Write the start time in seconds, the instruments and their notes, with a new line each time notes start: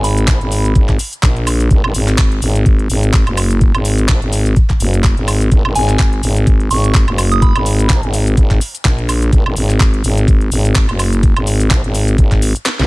Already playing: fm bass G#1
0.04 synth bell B5, open hi-hat, cabasa
0.17 closed hi-hat, cabasa
0.28 fm bass A#1, kick, clap, closed hi-hat, cabasa
0.41 fm bass G#1, closed hi-hat
0.52 open hi-hat, cabasa
0.65 closed hi-hat, cabasa
0.75 fm bass G#1, kick, closed hi-hat, cabasa
0.89 kick, clap, closed hi-hat
0.99 open hi-hat, cabasa
1.13 closed hi-hat, cabasa
1.23 fm bass A#1, kick, clap, closed hi-hat, cabasa
1.36 closed hi-hat
1.47 open hi-hat, cabasa, high woodblock
1.60 closed hi-hat, cabasa
1.71 fm bass G#1, kick, closed hi-hat, cabasa
1.84 fm bass G#1, high woodblock
1.94 fm bass G#1, open hi-hat, cabasa
2.08 clap, closed hi-hat, cabasa
2.18 kick, clap, closed hi-hat, cabasa
2.32 closed hi-hat
2.42 fm bass G#1, open hi-hat, cabasa
2.56 closed hi-hat, cabasa
2.66 kick, closed hi-hat, cabasa
2.79 closed hi-hat
2.90 fm bass G#1, open hi-hat, cabasa
3.03 closed hi-hat, cabasa
3.14 kick, clap, closed hi-hat, cabasa
3.27 fm bass F#1, closed hi-hat, high woodblock
3.37 open hi-hat, cabasa, high woodblock
3.51 closed hi-hat, cabasa
3.61 kick, closed hi-hat, cabasa
3.75 fm bass G#1, closed hi-hat, high woodblock
3.85 open hi-hat, cabasa
3.98 closed hi-hat, cabasa
4.09 fm bass A#1, kick, clap, closed hi-hat, cabasa
4.22 fm bass G#1, closed hi-hat
4.33 open hi-hat, cabasa
4.46 closed hi-hat, cabasa
4.56 kick, closed hi-hat, cabasa
4.70 kick, clap, closed hi-hat
4.80 fm bass F#1, open hi-hat, cabasa
4.94 closed hi-hat, cabasa
5.04 kick, clap, closed hi-hat, cabasa
5.17 fm bass G#1, closed hi-hat
5.28 open hi-hat, cabasa, high woodblock
5.41 closed hi-hat, cabasa
5.52 fm bass G#1, kick, closed hi-hat, cabasa
5.65 fm bass G#1, high woodblock
5.75 fm bass G#1, synth bell G#5, open hi-hat, cabasa
5.89 clap, closed hi-hat, cabasa
5.99 kick, clap, closed hi-hat, cabasa
6.13 closed hi-hat
6.23 fm bass G#1, open hi-hat, cabasa
6.36 closed hi-hat, cabasa
6.47 kick, closed hi-hat, cabasa
6.60 closed hi-hat
6.71 fm bass G#1, synth bell C#6, open hi-hat, cabasa
6.84 closed hi-hat, cabasa
6.95 kick, clap, closed hi-hat, cabasa
7.08 fm bass F#1, closed hi-hat, high woodblock
7.18 open hi-hat, cabasa, high woodblock
7.32 synth bell D#6, closed hi-hat, cabasa
7.42 synth bell B5, kick, closed hi-hat, cabasa
7.56 fm bass G#1, closed hi-hat, high woodblock
7.66 open hi-hat, cabasa
7.79 closed hi-hat, cabasa
7.90 fm bass A#1, kick, clap, closed hi-hat, cabasa
8.03 fm bass G#1, closed hi-hat
8.14 open hi-hat, cabasa
8.27 closed hi-hat, cabasa
8.37 fm bass G#1, kick, closed hi-hat, cabasa
8.51 kick, clap, closed hi-hat
8.61 open hi-hat, cabasa
8.75 closed hi-hat, cabasa
8.85 fm bass A#1, kick, clap, closed hi-hat, cabasa
8.98 closed hi-hat
9.09 open hi-hat, cabasa, high woodblock
9.22 closed hi-hat, cabasa
9.33 fm bass G#1, kick, closed hi-hat, cabasa
9.46 fm bass G#1, high woodblock
9.56 fm bass G#1, open hi-hat, cabasa
9.70 clap, closed hi-hat, cabasa
9.80 kick, clap, closed hi-hat, cabasa
9.94 closed hi-hat
10.04 fm bass G#1, open hi-hat, cabasa
10.17 closed hi-hat, cabasa
10.28 kick, closed hi-hat, cabasa
10.41 closed hi-hat
10.52 fm bass G#1, open hi-hat, cabasa
10.65 closed hi-hat, cabasa
10.75 kick, clap, closed hi-hat, cabasa
10.89 fm bass F#1, closed hi-hat, high woodblock
10.99 open hi-hat, cabasa, high woodblock
11.13 closed hi-hat, cabasa
11.23 kick, closed hi-hat, cabasa
11.36 fm bass G#1, closed hi-hat, high woodblock
11.47 open hi-hat, cabasa
11.60 closed hi-hat, cabasa
11.71 fm bass A#1, kick, clap, closed hi-hat, cabasa
11.84 fm bass G#1, closed hi-hat
11.95 open hi-hat, cabasa
12.08 closed hi-hat, cabasa
12.18 fm bass G#1, kick, closed hi-hat, cabasa
12.32 kick, clap, closed hi-hat
12.42 open hi-hat, cabasa
12.56 closed hi-hat, cabasa
12.66 snare, clap, closed hi-hat, cabasa
12.79 fm bass B1, snare, closed hi-hat